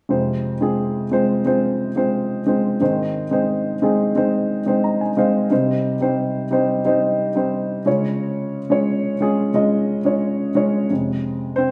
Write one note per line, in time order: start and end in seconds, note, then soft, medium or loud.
0.09 2.76 F2 soft
0.09 2.76 C3 soft
0.09 0.53 G#3 medium
0.09 0.53 C4 medium
0.09 0.53 F4 medium
0.09 0.53 C5 medium
0.61 1.04 G#3 medium
0.61 1.04 C4 medium
0.61 1.04 F4 medium
0.61 1.05 G#4 medium
1.11 1.40 G#3 medium
1.11 1.40 C4 medium
1.11 1.41 F4 medium
1.11 1.41 C5 medium
1.45 1.88 G#3 medium
1.45 1.89 C4 medium
1.45 1.89 F4 medium
1.45 1.89 C5 medium
1.96 2.39 G#3 medium
1.96 2.39 C4 medium
1.96 2.39 F4 medium
1.96 2.40 C5 medium
2.46 2.75 G#3 medium
2.46 2.75 C4 medium
2.46 2.76 F4 medium
2.46 2.76 C5 medium
2.80 5.47 G#2 soft
2.80 5.47 D#3 soft
2.80 3.23 G#3 medium
2.80 3.24 C4 medium
2.80 3.24 D#4 soft
2.80 3.24 C5 medium
3.31 3.74 G#3 medium
3.31 3.74 C4 medium
3.31 3.75 D#4 medium
3.31 3.75 C5 medium
3.82 4.11 G#3 medium
3.82 4.11 C4 medium
3.82 4.11 D#4 medium
3.82 4.11 G#4 medium
4.16 4.59 G#3 medium
4.16 4.59 C4 medium
4.16 4.59 D#4 medium
4.16 4.59 C5 medium
4.66 5.09 G#3 medium
4.66 5.09 C4 medium
4.66 5.10 D#4 medium
4.66 5.10 C5 medium
4.84 4.99 A#5 medium
5.01 5.16 G#5 soft
5.17 5.45 G#3 medium
5.17 5.46 C4 medium
5.17 5.46 D#4 medium
5.17 5.46 C5 medium
5.17 5.49 F5 soft
5.50 7.83 C3 medium
5.50 5.93 G3 medium
5.50 5.94 C4 medium
5.50 5.94 D#4 medium
5.50 5.94 C5 medium
6.01 6.44 G3 medium
6.01 6.44 C4 medium
6.01 6.44 D#4 medium
6.01 6.45 C5 medium
6.51 6.80 G3 medium
6.51 6.80 C4 medium
6.51 6.81 D#4 medium
6.51 6.81 C5 medium
6.85 7.28 G3 medium
6.85 7.28 C4 medium
6.85 7.29 D#4 medium
6.85 7.29 C5 medium
7.35 7.79 G3 medium
7.35 7.79 C4 medium
7.35 7.79 D#4 medium
7.35 7.79 C5 medium
7.86 10.52 C#3 medium
7.86 8.58 G#3 medium
7.86 8.58 C#4 medium
7.86 8.58 F4 medium
7.86 8.59 C#5 medium
8.70 9.13 G#3 medium
8.70 9.14 C#4 medium
8.70 9.14 F4 medium
8.70 9.14 C#5 medium
9.21 9.50 G#3 medium
9.21 9.50 C#4 medium
9.21 9.50 F4 medium
9.21 9.50 G#4 medium
9.54 9.98 G#3 medium
9.54 9.98 C#4 medium
9.54 9.98 F4 medium
9.54 9.98 D#5 medium
10.05 10.48 G#3 medium
10.05 10.49 C#4 medium
10.05 10.49 F4 medium
10.05 10.49 C#5 medium
10.55 10.84 G#3 medium
10.55 10.85 C#4 medium
10.55 10.85 F4 medium
10.55 10.85 C#5 medium
10.89 11.71 F2 soft
10.89 11.71 C3 soft
10.89 11.71 G#3 soft
11.56 11.71 C4 medium
11.56 11.71 C5 medium